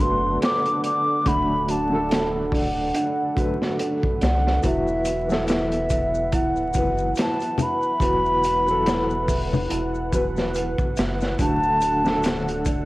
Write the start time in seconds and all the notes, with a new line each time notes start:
Already playing: D3 D4 A4 D5 F#5
0.00 F#1 F#3 A3 B3 F#4 C6
0.41 A4 D6, snare, closed hi-hat
0.65 closed hi-hat
0.83 D5 D6, closed hi-hat
1.25 D1 D3 F#3 A3 D4 F#4 B5, kick, closed hi-hat
1.68 F#4 A5, closed hi-hat
1.90 D3 F#3 A3
1.94 A4
2.10 A4, snare, closed hi-hat
2.52 D5 F#5, kick, open hi-hat
2.94 D4, closed hi-hat
3.35 D3 F#3 A3 F#4, kick, closed hi-hat
3.39 B4
3.62 snare
3.79 A4, closed hi-hat
4.03 kick
4.21 C2 D5 F#5, snare, closed hi-hat
4.47 snare
4.63 E1 E3 F#3 B3 E4 F#4 B4 E5 F#5, kick, closed hi-hat, maracas
4.88 maracas
5.05 F#4, closed hi-hat, maracas
5.28 E3 F#3 B3, maracas
5.32 A4, snare
5.48 B4 E5, snare, closed hi-hat, maracas
5.72 closed hi-hat, maracas
5.90 E5, kick, closed hi-hat, maracas
6.15 maracas
6.32 D1 E4 F#5, kick, closed hi-hat, maracas
6.56 maracas
6.74 F#1 E3 F#3 B3 F#4, kick, closed hi-hat, maracas
6.78 B4
6.98 maracas
7.15 B4, snare, closed hi-hat, maracas
7.20 A5
7.40 closed hi-hat, maracas
7.58 E5, closed hi-hat, low conga, maracas
7.63 B5
7.82 maracas
8.00 E1 E3 F#3 B3 E4 F#4, kick, closed hi-hat, maracas
8.26 maracas
8.43 F#4, closed hi-hat, maracas
8.66 E3 F#3 B3, maracas
8.71 A4
8.86 B4, snare, closed hi-hat, maracas
9.10 maracas
9.28 E5, kick, open hi-hat, maracas
9.53 low conga, maracas
9.70 E1 E4, closed hi-hat, maracas
9.95 maracas
10.11 E3 F#3 B3 F#4, kick, closed hi-hat, maracas
10.15 B4
10.37 snare, maracas
10.54 B4, closed hi-hat, maracas
10.78 kick, maracas
10.97 F#1 E5, snare, closed hi-hat, maracas
11.21 snare, maracas
11.39 D1 D3 F#3 A3 D4 F#4 A4 A5, kick, closed hi-hat, maracas
11.63 maracas
11.81 F#4, closed hi-hat, maracas
12.04 D3 F#3 A3, snare, maracas
12.09 A4
12.23 A4, snare, closed hi-hat, maracas
12.48 closed hi-hat, maracas
12.65 D5, kick, closed hi-hat, maracas